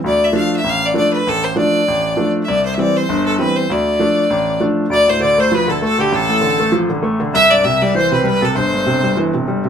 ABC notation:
X:1
M:4/4
L:1/16
Q:"Swing" 1/4=198
K:Ddor
V:1 name="Accordion"
z16 | z16 | z16 | z16 |
d3/2 d/2 c2 d2 c2 B2 A2 A2 G2 | A8 z8 | e2 d2 e4 c4 B2 A2 | c8 z8 |]
V:2 name="Fiddle"
d2 e2 f2 e2 f2 d2 d2 B2 | A2 c2 d8- d2 z3/2 e/2 | d2 c3/2 e/2 d2 c4 A2 B2 c2 | d12 z4 |
d2 c2 d2 c2 B2 A2 A2 G2 | A8 z8 | e2 d2 e2 d2 c2 B2 B2 A2 | c8 z8 |]
V:3 name="Grand piano" clef=bass
D,,4 [F,A,D]4 A,,,4 [F,A,D]4 | A,,,4 [F,A,D]4 A,,,4 [F,A,D]4 | C,,4 [E,G,C]4 G,,,4 [E,G,C]4 | D,,4 [F,A,D]4 A,,,4 [F,A,D]4 |
D,,2 A,,2 D,2 A,2 F,2 D,2 A,2 D,2 | A,,,2 A,,2 D,2 A,2 F,2 D,2 A,2 D,2 | C,,2 G,,2 C,2 G,2 E,2 C,2 G,2 C,2 | G,,,2 G,,2 C,2 G,2 E,2 C,2 G,2 C,2 |]